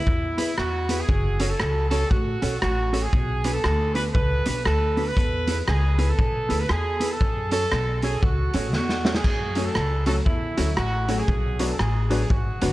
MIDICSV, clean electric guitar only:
0, 0, Header, 1, 3, 480
1, 0, Start_track
1, 0, Tempo, 509771
1, 1023, Time_signature, 4, 2, 24, 8
1, 11983, End_track
2, 0, Start_track
2, 0, Title_t, "Clean electric guitar"
2, 0, Program_c, 0, 27
2, 354, Note_on_c, 0, 59, 85
2, 357, Note_on_c, 0, 64, 86
2, 364, Note_on_c, 0, 68, 84
2, 364, Note_on_c, 0, 71, 100
2, 467, Note_off_c, 0, 59, 0
2, 468, Note_off_c, 0, 64, 0
2, 472, Note_off_c, 0, 68, 0
2, 472, Note_off_c, 0, 71, 0
2, 837, Note_on_c, 0, 59, 85
2, 843, Note_on_c, 0, 64, 83
2, 845, Note_on_c, 0, 68, 87
2, 850, Note_on_c, 0, 71, 90
2, 948, Note_off_c, 0, 59, 0
2, 951, Note_off_c, 0, 64, 0
2, 952, Note_off_c, 0, 68, 0
2, 955, Note_off_c, 0, 71, 0
2, 1318, Note_on_c, 0, 61, 90
2, 1323, Note_on_c, 0, 66, 103
2, 1325, Note_on_c, 0, 69, 101
2, 1330, Note_on_c, 0, 73, 102
2, 1429, Note_off_c, 0, 61, 0
2, 1432, Note_off_c, 0, 66, 0
2, 1433, Note_off_c, 0, 69, 0
2, 1435, Note_off_c, 0, 73, 0
2, 1798, Note_on_c, 0, 61, 71
2, 1803, Note_on_c, 0, 66, 84
2, 1807, Note_on_c, 0, 69, 83
2, 1810, Note_on_c, 0, 73, 92
2, 1910, Note_off_c, 0, 61, 0
2, 1912, Note_off_c, 0, 66, 0
2, 1914, Note_off_c, 0, 69, 0
2, 1915, Note_off_c, 0, 73, 0
2, 2279, Note_on_c, 0, 61, 84
2, 2284, Note_on_c, 0, 66, 79
2, 2285, Note_on_c, 0, 69, 98
2, 2290, Note_on_c, 0, 73, 93
2, 2390, Note_off_c, 0, 61, 0
2, 2393, Note_off_c, 0, 66, 0
2, 2393, Note_off_c, 0, 69, 0
2, 2396, Note_off_c, 0, 73, 0
2, 2756, Note_on_c, 0, 61, 78
2, 2759, Note_on_c, 0, 66, 82
2, 2762, Note_on_c, 0, 69, 94
2, 2767, Note_on_c, 0, 73, 87
2, 2869, Note_off_c, 0, 61, 0
2, 2870, Note_off_c, 0, 66, 0
2, 2872, Note_off_c, 0, 69, 0
2, 2874, Note_off_c, 0, 73, 0
2, 3243, Note_on_c, 0, 59, 86
2, 3245, Note_on_c, 0, 62, 95
2, 3250, Note_on_c, 0, 66, 87
2, 3251, Note_on_c, 0, 71, 95
2, 3352, Note_off_c, 0, 59, 0
2, 3354, Note_off_c, 0, 62, 0
2, 3356, Note_off_c, 0, 66, 0
2, 3357, Note_off_c, 0, 71, 0
2, 3719, Note_on_c, 0, 59, 82
2, 3723, Note_on_c, 0, 62, 85
2, 3729, Note_on_c, 0, 71, 98
2, 3730, Note_on_c, 0, 66, 78
2, 3831, Note_off_c, 0, 59, 0
2, 3832, Note_off_c, 0, 62, 0
2, 3836, Note_off_c, 0, 66, 0
2, 3836, Note_off_c, 0, 71, 0
2, 4199, Note_on_c, 0, 59, 80
2, 4204, Note_on_c, 0, 62, 86
2, 4206, Note_on_c, 0, 66, 86
2, 4207, Note_on_c, 0, 71, 101
2, 4311, Note_off_c, 0, 59, 0
2, 4313, Note_off_c, 0, 62, 0
2, 4314, Note_off_c, 0, 66, 0
2, 4315, Note_off_c, 0, 71, 0
2, 4680, Note_on_c, 0, 59, 91
2, 4687, Note_on_c, 0, 62, 91
2, 4692, Note_on_c, 0, 66, 88
2, 4692, Note_on_c, 0, 71, 92
2, 4791, Note_off_c, 0, 59, 0
2, 4795, Note_off_c, 0, 62, 0
2, 4797, Note_off_c, 0, 66, 0
2, 4797, Note_off_c, 0, 71, 0
2, 5154, Note_on_c, 0, 59, 87
2, 5159, Note_on_c, 0, 64, 92
2, 5165, Note_on_c, 0, 68, 94
2, 5166, Note_on_c, 0, 71, 94
2, 5268, Note_off_c, 0, 59, 0
2, 5271, Note_off_c, 0, 64, 0
2, 5274, Note_off_c, 0, 68, 0
2, 5274, Note_off_c, 0, 71, 0
2, 5633, Note_on_c, 0, 59, 72
2, 5634, Note_on_c, 0, 64, 88
2, 5640, Note_on_c, 0, 68, 74
2, 5643, Note_on_c, 0, 71, 89
2, 5748, Note_off_c, 0, 59, 0
2, 5748, Note_off_c, 0, 64, 0
2, 5751, Note_off_c, 0, 68, 0
2, 5753, Note_off_c, 0, 71, 0
2, 6109, Note_on_c, 0, 59, 75
2, 6114, Note_on_c, 0, 64, 82
2, 6118, Note_on_c, 0, 68, 94
2, 6123, Note_on_c, 0, 71, 87
2, 6226, Note_off_c, 0, 59, 0
2, 6228, Note_off_c, 0, 64, 0
2, 6230, Note_off_c, 0, 68, 0
2, 6233, Note_off_c, 0, 71, 0
2, 6593, Note_on_c, 0, 59, 83
2, 6600, Note_on_c, 0, 64, 84
2, 6602, Note_on_c, 0, 68, 93
2, 6606, Note_on_c, 0, 71, 90
2, 6708, Note_off_c, 0, 59, 0
2, 6711, Note_off_c, 0, 64, 0
2, 6712, Note_off_c, 0, 68, 0
2, 6714, Note_off_c, 0, 71, 0
2, 7079, Note_on_c, 0, 61, 87
2, 7083, Note_on_c, 0, 66, 85
2, 7086, Note_on_c, 0, 69, 81
2, 7087, Note_on_c, 0, 73, 102
2, 7191, Note_off_c, 0, 61, 0
2, 7193, Note_off_c, 0, 66, 0
2, 7194, Note_off_c, 0, 69, 0
2, 7195, Note_off_c, 0, 73, 0
2, 7561, Note_on_c, 0, 61, 71
2, 7565, Note_on_c, 0, 66, 76
2, 7569, Note_on_c, 0, 69, 84
2, 7572, Note_on_c, 0, 73, 82
2, 7671, Note_off_c, 0, 61, 0
2, 7674, Note_off_c, 0, 66, 0
2, 7675, Note_off_c, 0, 69, 0
2, 7677, Note_off_c, 0, 73, 0
2, 8044, Note_on_c, 0, 61, 98
2, 8049, Note_on_c, 0, 66, 89
2, 8051, Note_on_c, 0, 69, 85
2, 8055, Note_on_c, 0, 73, 97
2, 8153, Note_off_c, 0, 61, 0
2, 8155, Note_off_c, 0, 66, 0
2, 8156, Note_off_c, 0, 69, 0
2, 8159, Note_off_c, 0, 73, 0
2, 8524, Note_on_c, 0, 61, 86
2, 8528, Note_on_c, 0, 66, 86
2, 8534, Note_on_c, 0, 69, 95
2, 8535, Note_on_c, 0, 73, 89
2, 8633, Note_off_c, 0, 61, 0
2, 8635, Note_off_c, 0, 66, 0
2, 8638, Note_off_c, 0, 69, 0
2, 8638, Note_off_c, 0, 73, 0
2, 9007, Note_on_c, 0, 61, 80
2, 9011, Note_on_c, 0, 66, 74
2, 9015, Note_on_c, 0, 69, 83
2, 9018, Note_on_c, 0, 73, 81
2, 9114, Note_off_c, 0, 61, 0
2, 9116, Note_off_c, 0, 66, 0
2, 9118, Note_off_c, 0, 69, 0
2, 9120, Note_off_c, 0, 73, 0
2, 9477, Note_on_c, 0, 61, 80
2, 9482, Note_on_c, 0, 66, 83
2, 9485, Note_on_c, 0, 69, 78
2, 9491, Note_on_c, 0, 73, 77
2, 9590, Note_off_c, 0, 61, 0
2, 9592, Note_off_c, 0, 66, 0
2, 9593, Note_off_c, 0, 69, 0
2, 9596, Note_off_c, 0, 73, 0
2, 9958, Note_on_c, 0, 61, 89
2, 9958, Note_on_c, 0, 66, 91
2, 9965, Note_on_c, 0, 69, 93
2, 9968, Note_on_c, 0, 73, 84
2, 10070, Note_off_c, 0, 61, 0
2, 10070, Note_off_c, 0, 66, 0
2, 10073, Note_off_c, 0, 69, 0
2, 10075, Note_off_c, 0, 73, 0
2, 10439, Note_on_c, 0, 61, 96
2, 10443, Note_on_c, 0, 66, 97
2, 10448, Note_on_c, 0, 69, 95
2, 10450, Note_on_c, 0, 73, 93
2, 10550, Note_off_c, 0, 61, 0
2, 10552, Note_off_c, 0, 66, 0
2, 10555, Note_off_c, 0, 69, 0
2, 10556, Note_off_c, 0, 73, 0
2, 10920, Note_on_c, 0, 62, 74
2, 10924, Note_on_c, 0, 66, 73
2, 10926, Note_on_c, 0, 71, 88
2, 10930, Note_on_c, 0, 74, 86
2, 11031, Note_off_c, 0, 62, 0
2, 11033, Note_off_c, 0, 66, 0
2, 11034, Note_off_c, 0, 71, 0
2, 11036, Note_off_c, 0, 74, 0
2, 11396, Note_on_c, 0, 62, 75
2, 11399, Note_on_c, 0, 66, 80
2, 11407, Note_on_c, 0, 71, 77
2, 11408, Note_on_c, 0, 74, 91
2, 11509, Note_off_c, 0, 62, 0
2, 11510, Note_off_c, 0, 66, 0
2, 11514, Note_off_c, 0, 71, 0
2, 11515, Note_off_c, 0, 74, 0
2, 11881, Note_on_c, 0, 62, 78
2, 11886, Note_on_c, 0, 66, 85
2, 11891, Note_on_c, 0, 71, 83
2, 11892, Note_on_c, 0, 74, 92
2, 11983, Note_off_c, 0, 62, 0
2, 11983, Note_off_c, 0, 66, 0
2, 11983, Note_off_c, 0, 71, 0
2, 11983, Note_off_c, 0, 74, 0
2, 11983, End_track
3, 0, Start_track
3, 0, Title_t, "Muted clean electric guitar strokes"
3, 2461, Note_on_c, 9, 29, 42
3, 2555, Note_off_c, 9, 29, 0
3, 6298, Note_on_c, 9, 29, 40
3, 6392, Note_off_c, 9, 29, 0
3, 10139, Note_on_c, 9, 29, 38
3, 10233, Note_off_c, 9, 29, 0
3, 11983, End_track
0, 0, End_of_file